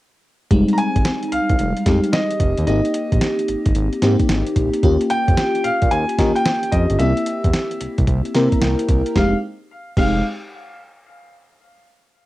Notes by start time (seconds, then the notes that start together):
0.51 F1 G3 G#3 C4 D#4, kick, closed hi-hat
0.68 closed hi-hat
0.73 A#5
0.78 G#5, closed hi-hat
0.96 G#1, kick, closed hi-hat
1.05 snare, closed hi-hat
1.23 closed hi-hat
1.32 C2 F5, closed hi-hat
1.49 C2, kick, closed hi-hat
1.59 F1, closed hi-hat
1.77 closed hi-hat
1.86 F2 G#3 C4 D#4 G4, kick, snare, closed hi-hat
2.04 closed hi-hat
2.13 D#5, snare, closed hi-hat
2.31 closed hi-hat
2.40 F1, kick, closed hi-hat
2.58 D#2, closed hi-hat
2.67 G#1 A#3 C4 D#4 G4 D#5, closed hi-hat
2.85 closed hi-hat
2.94 closed hi-hat
3.12 A#1, kick, closed hi-hat
3.21 snare, closed hi-hat
3.39 closed hi-hat
3.48 G#1, closed hi-hat
3.66 G#1, kick, closed hi-hat
3.75 G#1, closed hi-hat
3.93 closed hi-hat
4.02 G#2 A#3 C4 D#4 G4, snare, closed hi-hat
4.20 kick, closed hi-hat
4.29 G#1, snare, closed hi-hat
4.47 closed hi-hat
4.56 A#1, kick, closed hi-hat
4.74 closed hi-hat
4.83 D#2 A#3 C#4 F4 G4, kick, closed hi-hat
5.01 closed hi-hat
5.10 G5, closed hi-hat
5.28 F2, kick, closed hi-hat
5.37 snare, closed hi-hat
5.55 closed hi-hat
5.64 A#2 F5, closed hi-hat
5.82 A#2, kick, closed hi-hat
5.91 D#2 G#5, closed hi-hat
6.09 closed hi-hat
6.18 D#3 A#3 C#4 F4 G4, kick, snare, closed hi-hat
6.35 G5, closed hi-hat
6.45 snare, closed hi-hat
6.63 closed hi-hat
6.72 F2 D#5, kick, closed hi-hat
6.90 G1, closed hi-hat
6.99 C2 A#3 C4 E4 G4 E5, closed hi-hat
7.17 closed hi-hat
7.26 closed hi-hat
7.44 E2, kick, closed hi-hat
7.53 snare, closed hi-hat
7.71 closed hi-hat
7.81 C2, closed hi-hat
7.98 C2, kick, closed hi-hat
8.07 C2, kick, closed hi-hat
8.25 closed hi-hat
8.35 C3 A#3 C4 E4 A#4 A#5, snare, closed hi-hat
8.52 kick, closed hi-hat
8.61 C2 G5, snare, closed hi-hat
8.79 closed hi-hat
8.89 C2, kick, closed hi-hat
9.06 closed hi-hat
9.16 F1 G#3 C4 D#4 G4 F5, kick, snare
9.97 F1 G#3 C4 D#4 G4 F5, kick, crash